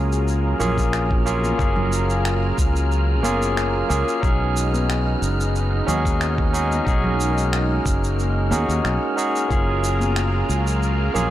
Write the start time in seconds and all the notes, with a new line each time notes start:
Already playing: C#2 F#3 A#3 C#4 F4 G#4 A#4 F6
0.12 shaker
0.28 shaker
0.59 A#1 A#3 C#4 F4 G#4, low conga, shaker
0.78 kick, shaker
0.93 finger snap, shaker
1.11 kick
1.25 A#3 C#4 F4 G#4, shaker
1.44 high conga, shaker
1.57 F#1 A#3 C#4 F4 G#4, kick, shaker
1.76 low conga
1.92 shaker
2.10 shaker
2.25 finger snap, shaker
2.58 C#2, kick, shaker
2.76 shaker
2.91 shaker
3.23 F#1 A#3 C#4 F4 G#4, high conga, shaker
3.42 shaker
3.57 finger snap, shaker
3.89 C#2 A#3 C#4 F4 G#4, shaker
4.08 shaker
4.21 B1 G#3 B3 C#4 D#4 F#4 G#4, kick, shaker
4.57 shaker
4.74 high conga, shaker
4.90 finger snap, shaker
5.22 F#1, shaker
5.40 shaker
5.55 shaker
5.87 D#2 C#4 D#4 F#4 G#4, low conga, shaker
6.05 kick, shaker
6.21 finger snap, shaker
6.38 kick
6.53 C#4 D#4 F#4 G#4, shaker
6.71 high conga, shaker
6.85 B1 A#3 C#4 D#4 F#4 G#4, kick, shaker
7.04 low conga
7.20 shaker
7.38 shaker
7.53 finger snap, shaker
7.86 F#1, kick, shaker
8.04 shaker
8.19 shaker
8.51 D#2 C#4 D#4 F#4 G#4, high conga, shaker
8.69 D#2, shaker
8.85 B1, finger snap, shaker
9.16 C#4 D#4 F#4 G#4, shaker
9.36 shaker
9.48 F#1 F#3 A#3 C#4 F4 G#4 A#4, kick, shaker
9.84 shaker
10.00 high conga, shaker
10.16 finger snap, shaker
10.49 C#2, shaker
10.67 shaker
10.83 shaker
11.14 A#1 A#3 C#4 F4 G#4, low conga, shaker